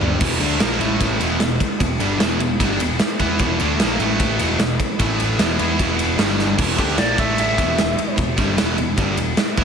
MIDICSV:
0, 0, Header, 1, 8, 480
1, 0, Start_track
1, 0, Tempo, 398936
1, 250, Time_signature, 4, 2, 24, 8
1, 11599, End_track
2, 0, Start_track
2, 0, Title_t, "Lead electric guitar"
2, 0, Program_c, 0, 29
2, 8174, Note_on_c, 0, 67, 80
2, 8404, Note_off_c, 0, 67, 0
2, 8409, Note_on_c, 0, 74, 85
2, 8656, Note_off_c, 0, 74, 0
2, 8656, Note_on_c, 0, 76, 83
2, 8885, Note_off_c, 0, 76, 0
2, 8899, Note_on_c, 0, 76, 105
2, 9825, Note_off_c, 0, 76, 0
2, 11599, End_track
3, 0, Start_track
3, 0, Title_t, "Distorted electric guitar"
3, 0, Program_c, 1, 30
3, 7, Note_on_c, 1, 43, 88
3, 8, Note_on_c, 1, 50, 98
3, 18, Note_on_c, 1, 55, 96
3, 241, Note_off_c, 1, 43, 0
3, 242, Note_off_c, 1, 50, 0
3, 247, Note_off_c, 1, 55, 0
3, 249, Note_on_c, 1, 40, 90
3, 252, Note_on_c, 1, 47, 96
3, 260, Note_on_c, 1, 52, 109
3, 471, Note_off_c, 1, 47, 0
3, 472, Note_off_c, 1, 52, 0
3, 476, Note_on_c, 1, 50, 89
3, 477, Note_on_c, 1, 57, 105
3, 482, Note_off_c, 1, 40, 0
3, 484, Note_on_c, 1, 62, 102
3, 713, Note_off_c, 1, 50, 0
3, 716, Note_off_c, 1, 57, 0
3, 718, Note_on_c, 1, 46, 89
3, 719, Note_off_c, 1, 62, 0
3, 729, Note_on_c, 1, 53, 87
3, 731, Note_on_c, 1, 58, 103
3, 946, Note_off_c, 1, 46, 0
3, 951, Note_on_c, 1, 45, 102
3, 954, Note_off_c, 1, 53, 0
3, 958, Note_off_c, 1, 58, 0
3, 959, Note_on_c, 1, 52, 108
3, 962, Note_on_c, 1, 57, 97
3, 1432, Note_off_c, 1, 45, 0
3, 1436, Note_off_c, 1, 52, 0
3, 1438, Note_off_c, 1, 57, 0
3, 1447, Note_on_c, 1, 40, 99
3, 1457, Note_on_c, 1, 47, 93
3, 1461, Note_on_c, 1, 52, 101
3, 1680, Note_off_c, 1, 40, 0
3, 1685, Note_off_c, 1, 47, 0
3, 1687, Note_off_c, 1, 52, 0
3, 1703, Note_on_c, 1, 40, 68
3, 1707, Note_on_c, 1, 47, 80
3, 1887, Note_off_c, 1, 40, 0
3, 1889, Note_off_c, 1, 47, 0
3, 2171, Note_on_c, 1, 40, 66
3, 2174, Note_on_c, 1, 47, 72
3, 2361, Note_off_c, 1, 40, 0
3, 2363, Note_off_c, 1, 47, 0
3, 2403, Note_on_c, 1, 43, 95
3, 2411, Note_on_c, 1, 50, 102
3, 2417, Note_on_c, 1, 55, 96
3, 2638, Note_off_c, 1, 43, 0
3, 2642, Note_off_c, 1, 50, 0
3, 2645, Note_off_c, 1, 55, 0
3, 2655, Note_on_c, 1, 40, 101
3, 2664, Note_on_c, 1, 47, 93
3, 2668, Note_on_c, 1, 52, 85
3, 2863, Note_off_c, 1, 40, 0
3, 2877, Note_off_c, 1, 47, 0
3, 2877, Note_on_c, 1, 40, 80
3, 2890, Note_off_c, 1, 52, 0
3, 2892, Note_on_c, 1, 47, 76
3, 3074, Note_off_c, 1, 40, 0
3, 3081, Note_off_c, 1, 47, 0
3, 3123, Note_on_c, 1, 43, 86
3, 3131, Note_on_c, 1, 50, 98
3, 3131, Note_on_c, 1, 55, 110
3, 3357, Note_off_c, 1, 43, 0
3, 3362, Note_off_c, 1, 50, 0
3, 3362, Note_off_c, 1, 55, 0
3, 3362, Note_on_c, 1, 40, 62
3, 3368, Note_on_c, 1, 47, 72
3, 3556, Note_off_c, 1, 40, 0
3, 3559, Note_off_c, 1, 47, 0
3, 3845, Note_on_c, 1, 52, 94
3, 3854, Note_on_c, 1, 59, 103
3, 3856, Note_on_c, 1, 64, 102
3, 4078, Note_off_c, 1, 52, 0
3, 4083, Note_off_c, 1, 59, 0
3, 4084, Note_off_c, 1, 64, 0
3, 4094, Note_on_c, 1, 40, 89
3, 4097, Note_on_c, 1, 52, 96
3, 4098, Note_on_c, 1, 47, 104
3, 4323, Note_off_c, 1, 40, 0
3, 4324, Note_off_c, 1, 52, 0
3, 4325, Note_off_c, 1, 47, 0
3, 4329, Note_on_c, 1, 50, 91
3, 4337, Note_on_c, 1, 57, 99
3, 4343, Note_on_c, 1, 62, 104
3, 4559, Note_off_c, 1, 50, 0
3, 4564, Note_off_c, 1, 57, 0
3, 4564, Note_on_c, 1, 46, 88
3, 4567, Note_off_c, 1, 62, 0
3, 4572, Note_on_c, 1, 53, 88
3, 4575, Note_on_c, 1, 58, 87
3, 4798, Note_off_c, 1, 46, 0
3, 4802, Note_off_c, 1, 53, 0
3, 4804, Note_off_c, 1, 58, 0
3, 4812, Note_on_c, 1, 45, 106
3, 4818, Note_on_c, 1, 52, 115
3, 4823, Note_on_c, 1, 57, 108
3, 5282, Note_off_c, 1, 45, 0
3, 5285, Note_off_c, 1, 52, 0
3, 5287, Note_off_c, 1, 57, 0
3, 5297, Note_on_c, 1, 40, 104
3, 5299, Note_on_c, 1, 47, 99
3, 5308, Note_on_c, 1, 52, 99
3, 5519, Note_off_c, 1, 40, 0
3, 5525, Note_off_c, 1, 47, 0
3, 5530, Note_off_c, 1, 52, 0
3, 5534, Note_on_c, 1, 40, 68
3, 5540, Note_on_c, 1, 47, 69
3, 5722, Note_off_c, 1, 40, 0
3, 5725, Note_off_c, 1, 47, 0
3, 6004, Note_on_c, 1, 45, 96
3, 6012, Note_on_c, 1, 52, 107
3, 6014, Note_on_c, 1, 57, 90
3, 6478, Note_off_c, 1, 45, 0
3, 6482, Note_off_c, 1, 52, 0
3, 6483, Note_off_c, 1, 57, 0
3, 6488, Note_on_c, 1, 40, 97
3, 6498, Note_on_c, 1, 47, 98
3, 6503, Note_on_c, 1, 52, 110
3, 6720, Note_off_c, 1, 40, 0
3, 6724, Note_off_c, 1, 52, 0
3, 6726, Note_off_c, 1, 47, 0
3, 6735, Note_on_c, 1, 59, 99
3, 6738, Note_on_c, 1, 52, 97
3, 6744, Note_on_c, 1, 64, 103
3, 6964, Note_off_c, 1, 59, 0
3, 6966, Note_off_c, 1, 52, 0
3, 6968, Note_off_c, 1, 64, 0
3, 6987, Note_on_c, 1, 40, 92
3, 6987, Note_on_c, 1, 47, 87
3, 6997, Note_on_c, 1, 52, 98
3, 7449, Note_off_c, 1, 40, 0
3, 7450, Note_off_c, 1, 47, 0
3, 7454, Note_on_c, 1, 43, 99
3, 7455, Note_off_c, 1, 52, 0
3, 7457, Note_on_c, 1, 50, 96
3, 7466, Note_on_c, 1, 55, 95
3, 7916, Note_off_c, 1, 43, 0
3, 7921, Note_off_c, 1, 50, 0
3, 7921, Note_on_c, 1, 40, 87
3, 7926, Note_on_c, 1, 47, 86
3, 7929, Note_off_c, 1, 55, 0
3, 7934, Note_on_c, 1, 52, 93
3, 8157, Note_off_c, 1, 40, 0
3, 8160, Note_off_c, 1, 47, 0
3, 8164, Note_off_c, 1, 52, 0
3, 8167, Note_on_c, 1, 50, 94
3, 8179, Note_on_c, 1, 62, 90
3, 8181, Note_on_c, 1, 57, 99
3, 8388, Note_off_c, 1, 50, 0
3, 8391, Note_off_c, 1, 57, 0
3, 8393, Note_on_c, 1, 46, 88
3, 8396, Note_off_c, 1, 62, 0
3, 8396, Note_on_c, 1, 53, 97
3, 8401, Note_on_c, 1, 58, 101
3, 8633, Note_off_c, 1, 46, 0
3, 8635, Note_off_c, 1, 53, 0
3, 8637, Note_off_c, 1, 58, 0
3, 8645, Note_on_c, 1, 45, 97
3, 8650, Note_on_c, 1, 57, 101
3, 8653, Note_on_c, 1, 52, 100
3, 9119, Note_off_c, 1, 45, 0
3, 9122, Note_off_c, 1, 57, 0
3, 9123, Note_off_c, 1, 52, 0
3, 9127, Note_on_c, 1, 40, 88
3, 9127, Note_on_c, 1, 47, 94
3, 9136, Note_on_c, 1, 52, 101
3, 9348, Note_off_c, 1, 40, 0
3, 9353, Note_off_c, 1, 47, 0
3, 9362, Note_on_c, 1, 40, 71
3, 9365, Note_off_c, 1, 52, 0
3, 9368, Note_on_c, 1, 47, 70
3, 9557, Note_off_c, 1, 40, 0
3, 9560, Note_off_c, 1, 47, 0
3, 9837, Note_on_c, 1, 40, 65
3, 9847, Note_on_c, 1, 47, 73
3, 10035, Note_off_c, 1, 40, 0
3, 10040, Note_off_c, 1, 47, 0
3, 10085, Note_on_c, 1, 43, 82
3, 10092, Note_on_c, 1, 55, 84
3, 10093, Note_on_c, 1, 50, 84
3, 10305, Note_off_c, 1, 43, 0
3, 10310, Note_on_c, 1, 40, 94
3, 10314, Note_off_c, 1, 50, 0
3, 10319, Note_on_c, 1, 47, 97
3, 10322, Note_off_c, 1, 55, 0
3, 10327, Note_on_c, 1, 52, 95
3, 10544, Note_off_c, 1, 40, 0
3, 10545, Note_off_c, 1, 47, 0
3, 10558, Note_on_c, 1, 40, 79
3, 10560, Note_off_c, 1, 52, 0
3, 10560, Note_on_c, 1, 47, 79
3, 10755, Note_off_c, 1, 40, 0
3, 10756, Note_off_c, 1, 47, 0
3, 10780, Note_on_c, 1, 43, 86
3, 10790, Note_on_c, 1, 50, 96
3, 10792, Note_on_c, 1, 55, 99
3, 11026, Note_off_c, 1, 43, 0
3, 11031, Note_off_c, 1, 50, 0
3, 11032, Note_off_c, 1, 55, 0
3, 11039, Note_on_c, 1, 40, 63
3, 11047, Note_on_c, 1, 47, 80
3, 11235, Note_off_c, 1, 40, 0
3, 11239, Note_off_c, 1, 47, 0
3, 11525, Note_on_c, 1, 52, 91
3, 11528, Note_on_c, 1, 59, 107
3, 11533, Note_on_c, 1, 64, 103
3, 11599, Note_off_c, 1, 52, 0
3, 11599, Note_off_c, 1, 59, 0
3, 11599, Note_off_c, 1, 64, 0
3, 11599, End_track
4, 0, Start_track
4, 0, Title_t, "Picked electric bass"
4, 0, Program_c, 2, 34
4, 7, Note_on_c, 2, 31, 84
4, 232, Note_off_c, 2, 31, 0
4, 255, Note_on_c, 2, 28, 90
4, 476, Note_off_c, 2, 28, 0
4, 484, Note_on_c, 2, 38, 96
4, 710, Note_off_c, 2, 38, 0
4, 716, Note_on_c, 2, 34, 82
4, 945, Note_off_c, 2, 34, 0
4, 959, Note_on_c, 2, 33, 94
4, 1409, Note_off_c, 2, 33, 0
4, 1438, Note_on_c, 2, 28, 92
4, 1663, Note_off_c, 2, 28, 0
4, 1670, Note_on_c, 2, 28, 72
4, 1902, Note_off_c, 2, 28, 0
4, 2169, Note_on_c, 2, 28, 82
4, 2386, Note_off_c, 2, 28, 0
4, 2393, Note_on_c, 2, 31, 88
4, 2617, Note_off_c, 2, 31, 0
4, 2624, Note_on_c, 2, 28, 84
4, 2858, Note_off_c, 2, 28, 0
4, 2880, Note_on_c, 2, 28, 82
4, 3106, Note_off_c, 2, 28, 0
4, 3127, Note_on_c, 2, 31, 95
4, 3350, Note_off_c, 2, 31, 0
4, 3373, Note_on_c, 2, 28, 67
4, 3593, Note_off_c, 2, 28, 0
4, 3843, Note_on_c, 2, 40, 92
4, 4067, Note_off_c, 2, 40, 0
4, 4083, Note_on_c, 2, 28, 93
4, 4307, Note_off_c, 2, 28, 0
4, 4340, Note_on_c, 2, 38, 106
4, 4557, Note_off_c, 2, 38, 0
4, 4567, Note_on_c, 2, 34, 79
4, 4790, Note_off_c, 2, 34, 0
4, 4808, Note_on_c, 2, 33, 89
4, 5254, Note_off_c, 2, 33, 0
4, 5279, Note_on_c, 2, 28, 87
4, 5506, Note_off_c, 2, 28, 0
4, 5520, Note_on_c, 2, 28, 73
4, 5746, Note_off_c, 2, 28, 0
4, 6014, Note_on_c, 2, 33, 95
4, 6457, Note_off_c, 2, 33, 0
4, 6481, Note_on_c, 2, 28, 73
4, 6707, Note_off_c, 2, 28, 0
4, 6724, Note_on_c, 2, 40, 99
4, 6948, Note_off_c, 2, 40, 0
4, 6972, Note_on_c, 2, 28, 93
4, 7417, Note_off_c, 2, 28, 0
4, 7444, Note_on_c, 2, 31, 86
4, 7892, Note_off_c, 2, 31, 0
4, 7929, Note_on_c, 2, 28, 86
4, 8152, Note_off_c, 2, 28, 0
4, 8167, Note_on_c, 2, 38, 101
4, 8391, Note_off_c, 2, 38, 0
4, 8402, Note_on_c, 2, 34, 78
4, 8628, Note_off_c, 2, 34, 0
4, 8641, Note_on_c, 2, 33, 94
4, 9091, Note_off_c, 2, 33, 0
4, 9122, Note_on_c, 2, 28, 88
4, 9348, Note_off_c, 2, 28, 0
4, 9354, Note_on_c, 2, 28, 71
4, 9584, Note_off_c, 2, 28, 0
4, 9843, Note_on_c, 2, 28, 80
4, 10069, Note_off_c, 2, 28, 0
4, 10077, Note_on_c, 2, 31, 98
4, 10305, Note_off_c, 2, 31, 0
4, 10312, Note_on_c, 2, 28, 82
4, 10543, Note_off_c, 2, 28, 0
4, 10563, Note_on_c, 2, 28, 77
4, 10788, Note_off_c, 2, 28, 0
4, 10800, Note_on_c, 2, 31, 89
4, 11027, Note_off_c, 2, 31, 0
4, 11037, Note_on_c, 2, 28, 75
4, 11265, Note_off_c, 2, 28, 0
4, 11514, Note_on_c, 2, 40, 83
4, 11599, Note_off_c, 2, 40, 0
4, 11599, End_track
5, 0, Start_track
5, 0, Title_t, "Muted distorted electric guitar strokes"
5, 1938, Note_on_c, 9, 29, 63
5, 2058, Note_off_c, 9, 29, 0
5, 3601, Note_on_c, 9, 29, 62
5, 3722, Note_off_c, 9, 29, 0
5, 5776, Note_on_c, 9, 29, 58
5, 5897, Note_off_c, 9, 29, 0
5, 9606, Note_on_c, 9, 29, 56
5, 9727, Note_off_c, 9, 29, 0
5, 11284, Note_on_c, 9, 29, 69
5, 11405, Note_off_c, 9, 29, 0
5, 11599, End_track
6, 0, Start_track
6, 0, Title_t, "Muted overdriven electric guitar strokes"
6, 1936, Note_on_c, 9, 29, 63
6, 2056, Note_off_c, 9, 29, 0
6, 3623, Note_on_c, 9, 29, 58
6, 3744, Note_off_c, 9, 29, 0
6, 5777, Note_on_c, 9, 29, 60
6, 5897, Note_off_c, 9, 29, 0
6, 9598, Note_on_c, 9, 29, 59
6, 9718, Note_off_c, 9, 29, 0
6, 11285, Note_on_c, 9, 29, 66
6, 11406, Note_off_c, 9, 29, 0
6, 11599, End_track
7, 0, Start_track
7, 0, Title_t, "Muted picked electric bass strokes"
7, 1932, Note_on_c, 9, 29, 39
7, 2053, Note_off_c, 9, 29, 0
7, 3610, Note_on_c, 9, 29, 42
7, 3731, Note_off_c, 9, 29, 0
7, 5769, Note_on_c, 9, 29, 39
7, 5890, Note_off_c, 9, 29, 0
7, 9599, Note_on_c, 9, 29, 41
7, 9719, Note_off_c, 9, 29, 0
7, 11274, Note_on_c, 9, 29, 42
7, 11395, Note_off_c, 9, 29, 0
7, 11599, End_track
8, 0, Start_track
8, 0, Title_t, "Drums"
8, 16, Note_on_c, 9, 43, 74
8, 137, Note_off_c, 9, 43, 0
8, 247, Note_on_c, 9, 49, 114
8, 252, Note_on_c, 9, 36, 125
8, 367, Note_off_c, 9, 49, 0
8, 372, Note_off_c, 9, 36, 0
8, 485, Note_on_c, 9, 51, 60
8, 606, Note_off_c, 9, 51, 0
8, 724, Note_on_c, 9, 51, 96
8, 726, Note_on_c, 9, 38, 120
8, 844, Note_off_c, 9, 51, 0
8, 846, Note_off_c, 9, 38, 0
8, 970, Note_on_c, 9, 51, 68
8, 1091, Note_off_c, 9, 51, 0
8, 1208, Note_on_c, 9, 51, 111
8, 1210, Note_on_c, 9, 36, 90
8, 1328, Note_off_c, 9, 51, 0
8, 1330, Note_off_c, 9, 36, 0
8, 1450, Note_on_c, 9, 51, 71
8, 1570, Note_off_c, 9, 51, 0
8, 1684, Note_on_c, 9, 51, 91
8, 1686, Note_on_c, 9, 38, 103
8, 1804, Note_off_c, 9, 51, 0
8, 1807, Note_off_c, 9, 38, 0
8, 1930, Note_on_c, 9, 36, 81
8, 1930, Note_on_c, 9, 51, 73
8, 2050, Note_off_c, 9, 36, 0
8, 2050, Note_off_c, 9, 51, 0
8, 2169, Note_on_c, 9, 51, 105
8, 2170, Note_on_c, 9, 36, 106
8, 2289, Note_off_c, 9, 51, 0
8, 2290, Note_off_c, 9, 36, 0
8, 2408, Note_on_c, 9, 51, 69
8, 2528, Note_off_c, 9, 51, 0
8, 2648, Note_on_c, 9, 51, 105
8, 2650, Note_on_c, 9, 38, 119
8, 2768, Note_off_c, 9, 51, 0
8, 2771, Note_off_c, 9, 38, 0
8, 2891, Note_on_c, 9, 51, 66
8, 3011, Note_off_c, 9, 51, 0
8, 3129, Note_on_c, 9, 36, 94
8, 3132, Note_on_c, 9, 51, 109
8, 3249, Note_off_c, 9, 36, 0
8, 3252, Note_off_c, 9, 51, 0
8, 3368, Note_on_c, 9, 51, 78
8, 3488, Note_off_c, 9, 51, 0
8, 3601, Note_on_c, 9, 51, 87
8, 3604, Note_on_c, 9, 38, 108
8, 3722, Note_off_c, 9, 51, 0
8, 3724, Note_off_c, 9, 38, 0
8, 3845, Note_on_c, 9, 51, 68
8, 3846, Note_on_c, 9, 36, 80
8, 3965, Note_off_c, 9, 51, 0
8, 3966, Note_off_c, 9, 36, 0
8, 4080, Note_on_c, 9, 51, 94
8, 4086, Note_on_c, 9, 36, 106
8, 4201, Note_off_c, 9, 51, 0
8, 4207, Note_off_c, 9, 36, 0
8, 4326, Note_on_c, 9, 51, 60
8, 4446, Note_off_c, 9, 51, 0
8, 4568, Note_on_c, 9, 51, 92
8, 4570, Note_on_c, 9, 38, 121
8, 4688, Note_off_c, 9, 51, 0
8, 4691, Note_off_c, 9, 38, 0
8, 4810, Note_on_c, 9, 51, 66
8, 4930, Note_off_c, 9, 51, 0
8, 5049, Note_on_c, 9, 51, 102
8, 5051, Note_on_c, 9, 36, 103
8, 5169, Note_off_c, 9, 51, 0
8, 5171, Note_off_c, 9, 36, 0
8, 5286, Note_on_c, 9, 51, 81
8, 5406, Note_off_c, 9, 51, 0
8, 5528, Note_on_c, 9, 51, 95
8, 5530, Note_on_c, 9, 38, 99
8, 5648, Note_off_c, 9, 51, 0
8, 5651, Note_off_c, 9, 38, 0
8, 5771, Note_on_c, 9, 36, 89
8, 5772, Note_on_c, 9, 51, 72
8, 5891, Note_off_c, 9, 36, 0
8, 5893, Note_off_c, 9, 51, 0
8, 6009, Note_on_c, 9, 51, 107
8, 6012, Note_on_c, 9, 36, 109
8, 6130, Note_off_c, 9, 51, 0
8, 6132, Note_off_c, 9, 36, 0
8, 6253, Note_on_c, 9, 51, 68
8, 6373, Note_off_c, 9, 51, 0
8, 6487, Note_on_c, 9, 51, 116
8, 6490, Note_on_c, 9, 38, 120
8, 6608, Note_off_c, 9, 51, 0
8, 6610, Note_off_c, 9, 38, 0
8, 6729, Note_on_c, 9, 51, 79
8, 6849, Note_off_c, 9, 51, 0
8, 6971, Note_on_c, 9, 51, 105
8, 6972, Note_on_c, 9, 36, 92
8, 7092, Note_off_c, 9, 36, 0
8, 7092, Note_off_c, 9, 51, 0
8, 7206, Note_on_c, 9, 51, 81
8, 7327, Note_off_c, 9, 51, 0
8, 7444, Note_on_c, 9, 51, 89
8, 7446, Note_on_c, 9, 38, 107
8, 7564, Note_off_c, 9, 51, 0
8, 7567, Note_off_c, 9, 38, 0
8, 7577, Note_on_c, 9, 38, 34
8, 7686, Note_off_c, 9, 38, 0
8, 7686, Note_on_c, 9, 38, 57
8, 7807, Note_off_c, 9, 38, 0
8, 7921, Note_on_c, 9, 49, 118
8, 7925, Note_on_c, 9, 36, 108
8, 8041, Note_off_c, 9, 49, 0
8, 8046, Note_off_c, 9, 36, 0
8, 8164, Note_on_c, 9, 36, 107
8, 8164, Note_on_c, 9, 51, 64
8, 8279, Note_on_c, 9, 38, 34
8, 8284, Note_off_c, 9, 36, 0
8, 8284, Note_off_c, 9, 51, 0
8, 8396, Note_on_c, 9, 51, 103
8, 8398, Note_off_c, 9, 38, 0
8, 8398, Note_on_c, 9, 38, 127
8, 8516, Note_off_c, 9, 51, 0
8, 8519, Note_off_c, 9, 38, 0
8, 8640, Note_on_c, 9, 51, 73
8, 8642, Note_on_c, 9, 36, 101
8, 8761, Note_off_c, 9, 51, 0
8, 8763, Note_off_c, 9, 36, 0
8, 8881, Note_on_c, 9, 51, 114
8, 9001, Note_off_c, 9, 51, 0
8, 9124, Note_on_c, 9, 36, 106
8, 9124, Note_on_c, 9, 51, 74
8, 9244, Note_off_c, 9, 36, 0
8, 9245, Note_off_c, 9, 51, 0
8, 9364, Note_on_c, 9, 51, 95
8, 9367, Note_on_c, 9, 38, 95
8, 9484, Note_off_c, 9, 51, 0
8, 9487, Note_off_c, 9, 38, 0
8, 9607, Note_on_c, 9, 51, 76
8, 9727, Note_off_c, 9, 51, 0
8, 9837, Note_on_c, 9, 51, 105
8, 9841, Note_on_c, 9, 36, 96
8, 9957, Note_off_c, 9, 51, 0
8, 9962, Note_off_c, 9, 36, 0
8, 10078, Note_on_c, 9, 51, 76
8, 10081, Note_on_c, 9, 36, 103
8, 10198, Note_off_c, 9, 51, 0
8, 10201, Note_off_c, 9, 36, 0
8, 10323, Note_on_c, 9, 51, 110
8, 10325, Note_on_c, 9, 38, 120
8, 10443, Note_off_c, 9, 51, 0
8, 10446, Note_off_c, 9, 38, 0
8, 10563, Note_on_c, 9, 51, 74
8, 10683, Note_off_c, 9, 51, 0
8, 10799, Note_on_c, 9, 51, 101
8, 10801, Note_on_c, 9, 36, 115
8, 10920, Note_off_c, 9, 51, 0
8, 10922, Note_off_c, 9, 36, 0
8, 11037, Note_on_c, 9, 51, 78
8, 11158, Note_off_c, 9, 51, 0
8, 11275, Note_on_c, 9, 51, 93
8, 11277, Note_on_c, 9, 38, 99
8, 11395, Note_off_c, 9, 51, 0
8, 11398, Note_off_c, 9, 38, 0
8, 11404, Note_on_c, 9, 38, 33
8, 11518, Note_on_c, 9, 51, 68
8, 11521, Note_on_c, 9, 36, 98
8, 11524, Note_off_c, 9, 38, 0
8, 11599, Note_off_c, 9, 36, 0
8, 11599, Note_off_c, 9, 51, 0
8, 11599, End_track
0, 0, End_of_file